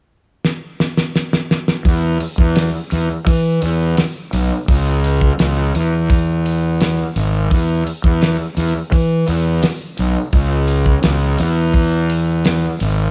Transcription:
0.45 snare medium
0.80 snare medium
0.97 snare medium
1.16 snare medium
1.33 snare medium
1.51 snare medium
1.68 snare medium
1.85 2.17 E2 medium
1.85 kick loud
1.85 open hi-hat medium
2.20 open hi-hat soft
2.38 2.70 E2 medium
2.38 kick medium
2.56 snare loud
2.56 open hi-hat medium
2.91 3.08 E2 medium
2.91 open hi-hat soft
3.27 3.58 E3 medium
3.27 kick loud
3.27 open hi-hat medium
3.62 3.94 E2 medium
3.62 open hi-hat soft
3.97 snare medium
3.97 open hi-hat medium
4.33 4.49 B1 medium
4.33 open hi-hat medium
4.68 5.31 C#2 medium
4.68 kick loud
4.68 open hi-hat medium
5.04 open hi-hat soft
5.21 kick medium
5.39 5.71 C#2 medium
5.39 snare loud
5.39 open hi-hat medium
5.75 7.00 E2 medium
5.75 open hi-hat soft
6.10 kick loud
6.10 open hi-hat medium
6.46 open hi-hat soft
6.81 snare medium
6.81 open hi-hat medium
7.16 7.47 G#1 medium
7.16 open hi-hat soft
7.51 7.82 E2 loud
7.51 kick loud
7.51 open hi-hat medium
7.87 open hi-hat soft
8.04 8.36 E2 medium
8.04 kick medium
8.22 snare loud
8.22 open hi-hat medium
8.57 8.73 E2 medium
8.57 open hi-hat soft
8.92 9.24 E3 medium
8.92 kick loud
8.92 open hi-hat medium
9.28 9.59 E2 medium
9.28 open hi-hat medium
9.63 snare loud
9.63 open hi-hat medium
9.98 10.14 B1 medium
9.98 open hi-hat soft
10.33 10.96 C#2 medium
10.33 kick loud
10.33 open hi-hat medium
10.68 open hi-hat soft
10.86 kick medium
11.03 11.36 C#2 medium
11.03 snare loud
11.03 open hi-hat medium
11.38 12.64 E2 medium
11.38 open hi-hat soft
11.74 kick loud
11.74 open hi-hat medium
12.10 open hi-hat soft
12.45 snare loud
12.45 open hi-hat medium
12.80 13.11 G#1 medium
12.80 open hi-hat soft

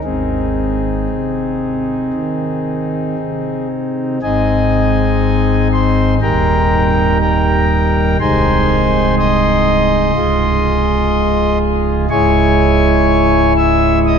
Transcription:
0.04 1.07 G#1 medium
0.04 1.07 G#2 medium
0.04 4.18 C4 soft
0.04 4.18 D#4 soft
0.04 3.67 G#4 medium
1.10 2.12 C3 medium
2.14 3.15 D#3 medium
3.18 4.19 C3 medium
4.22 6.17 G#1 medium
4.22 6.17 G#2 medium
4.22 6.17 G#3 medium
4.22 6.17 C4 medium
4.22 6.17 D#4 medium
4.22 5.68 G#4 medium
4.22 5.68 D#5 medium
4.22 5.68 G#5 loud
5.72 6.14 C5 medium
5.72 6.14 C6 medium
6.21 8.16 D#1 medium
6.21 8.16 D#2 medium
6.21 8.16 G3 medium
6.21 8.16 D#4 medium
6.21 7.18 A#4 medium
6.21 7.18 G5 medium
6.21 7.18 A#5 loud
7.20 8.17 A#4 medium
7.20 8.18 G5 medium
7.20 8.17 A#5 medium
8.20 10.11 C1 medium
8.20 10.11 C2 medium
8.20 10.11 G#3 medium
8.20 10.11 D#4 medium
8.20 10.11 G#4 medium
8.20 9.15 C5 medium
8.20 9.15 G#5 medium
8.20 9.15 C6 loud
9.18 11.58 D#5 medium
9.18 11.58 C6 medium
9.18 11.58 D#6 loud
10.15 12.06 C#1 medium
10.15 12.06 C#2 medium
10.15 12.06 G#3 medium
10.15 12.06 F4 medium
10.15 12.06 G#4 medium
12.10 14.19 C#1 medium
12.10 14.19 C#2 medium
12.10 14.19 G#3 medium
12.10 14.19 E4 medium
12.10 14.19 G#4 medium
12.10 13.53 C#5 loud
12.10 13.53 G#5 loud
12.10 13.53 C#6 loud
13.57 13.99 E5 loud
13.57 13.99 E6 loud
14.06 14.19 D#5 loud
14.06 14.19 D#6 loud

